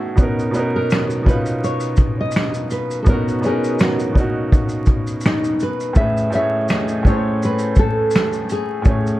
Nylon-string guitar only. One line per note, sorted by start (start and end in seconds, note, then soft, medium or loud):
0.00 0.76 F#4 medium
0.76 1.24 A#4 medium
1.28 1.37 B4 loud
1.64 2.20 C#5 medium
2.21 2.71 D#5 medium
2.72 3.02 B4 medium
3.02 3.08 A4 medium
3.09 3.45 A#4 medium
3.46 3.78 G#4 medium
3.82 5.21 F#4 medium
5.27 5.63 D#4 medium
5.63 5.95 B4 medium
5.97 6.34 E5 loud
6.35 6.68 E5 medium
6.71 7.03 D#5 medium
7.07 7.40 C#5 medium
7.45 7.77 B4 medium
7.79 8.52 A4 loud
8.52 9.20 G#4 medium